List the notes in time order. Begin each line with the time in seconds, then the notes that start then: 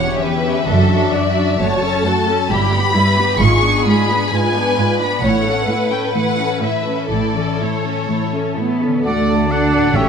Already playing: E1 E2 E3 C#5 F#5
0.00 C#4 G4
0.21 E2 G4 B4 E5
0.44 C#4 G4
0.66 F#1 F#2 D4 F#4 A4
0.90 D4 F#4
1.13 F#2 F#4 D5
1.35 D4 F#4
1.60 F#1 F#2 A3 F#4 C#5 A5
1.83 C#4 A4
2.05 F#2 A3 F#4 A4
2.28 C#4 A4
2.50 G1 G2 G3 E4 G4 B5
2.73 B3 G4
2.95 G2 G3 E4 B4
3.18 B3 G4
3.39 G#1 G#2 G#3 F4 G#4 C#6
3.62 B3 D4
3.87 G#2 G#3 D4 F4 B5
4.10 B3 D4
4.30 G#2 G#3 F4 B4 G#5
4.54 B3 D4
4.77 G#2 G#3 D4 F4
5.00 B3 D4 B5
5.23 A1 A2 A3 E4 C#5 F#5
5.45 A3 C#4 A4
5.68 A2 A3 C#4 E4 B4
5.91 A3 C#4 A4 G5
6.14 A2 E3 A3 E4 F#5
6.38 A3 C#4 A4
6.62 A2 A3 C#4 E4 E5
6.86 A3 C#4 A4
7.11 A1 A2 A3 E4 A4 D5
7.36 E3 C#4 A4
7.60 A2 A3 C#4 E4 C#5
7.84 A3 C#4 A4
8.08 A2 E3 A3 E4
8.33 A3 C#4 A4
8.57 A2 A3 B3 C#4 E4
8.81 A3 C#4 A4
8.86 D3
8.90 A3
8.95 D4
8.99 F#4
9.04 D2 A3 D4 F#4 A4 D5 F#5
9.28 A5
9.48 D4 A4 D5 F#5
9.76 A2
9.80 A3
9.85 C#4
9.89 A2 G4 A4
9.94 A1 C#4 G4 C#5 E5 G5